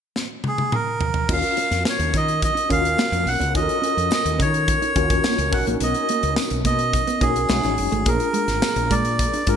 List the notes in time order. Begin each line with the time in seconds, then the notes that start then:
0.16 snare
0.44 high tom
0.48 G#4
0.58 high tom
0.72 A#4, mid tom
1.01 floor tom
1.14 floor tom
1.28 D#2 C#4 D#4 F4 F#4 A#4, kick, crash
1.33 F5
1.42 muted clean electric guitar stroke, closed hi-hat
1.57 C#4, closed hi-hat
1.71 F2, snare, closed hi-hat
1.85 snare, tambourine
1.90 C#5
1.99 D#2, closed hi-hat
2.14 D#3 C#4 D#5, kick, closed hi-hat
2.28 closed hi-hat
2.42 D#5, muted clean electric guitar stroke, kick, closed hi-hat
2.55 D#4, closed hi-hat
2.69 D#2 C#4 F4 F#4 A#4 F5, kick, closed hi-hat
2.85 closed hi-hat
2.98 A#3, snare, tambourine
3.12 F2, muted clean electric guitar stroke, closed hi-hat
3.26 B1 F#5, open hi-hat
3.40 C#2 C#4, closed hi-hat
3.54 D#2 C#4 D#4 F4 F#4 A4 D#5, kick, closed hi-hat
3.62 A#4
3.68 muted clean electric guitar stroke, closed hi-hat
3.81 C#4, closed hi-hat
3.97 F2, closed hi-hat
4.11 D#5, snare, tambourine
4.25 D#2, closed hi-hat
4.39 D#3 C#4 C#5, kick, closed hi-hat
4.54 closed hi-hat
4.68 muted clean electric guitar stroke, kick, closed hi-hat
4.82 D#4, closed hi-hat
4.96 D#2 C#4 F4 F#4 A#4, kick, closed hi-hat
5.10 kick, closed hi-hat
5.24 A#3, snare, tambourine
5.38 C#2, closed hi-hat
5.52 B1 C#4 D#4 F#4 A#4 F#5, muted clean electric guitar stroke, kick, open hi-hat
5.67 A#1 A#3, closed hi-hat
5.80 B1 B3 D#5, closed hi-hat
5.94 muted clean electric guitar stroke, closed hi-hat
6.09 A#3, closed hi-hat
6.23 C#2, closed hi-hat
6.36 snare, tambourine
6.50 B1, closed hi-hat
6.65 B2 A#3 D#5, kick, closed hi-hat
6.79 closed hi-hat
6.93 muted clean electric guitar stroke, kick, closed hi-hat
7.07 B3, closed hi-hat
7.21 B1 A#3 C#4 D#4 F#4 G#4 A#4, kick, closed hi-hat
7.36 closed hi-hat
7.49 B1 G#3 A3 C#4 D#4 F#4, snare, tambourine
7.63 A1, muted clean electric guitar stroke, snare, closed hi-hat
7.78 F#1, open hi-hat
7.92 G#1 A3, closed hi-hat
8.05 A#1 A#3 C#4 F4 G#4 A#4, kick, closed hi-hat
8.12 D4
8.20 muted clean electric guitar stroke, closed hi-hat
8.33 G#3, closed hi-hat
8.48 G#1, snare, closed hi-hat
8.62 snare, tambourine
8.76 A#1, closed hi-hat
8.90 A#2 G#3 D5, kick, closed hi-hat
9.05 closed hi-hat
9.19 muted clean electric guitar stroke, kick, closed hi-hat
9.33 D4, closed hi-hat
9.46 G#2 C#4 D4 F4 G#4 A#4, kick, closed hi-hat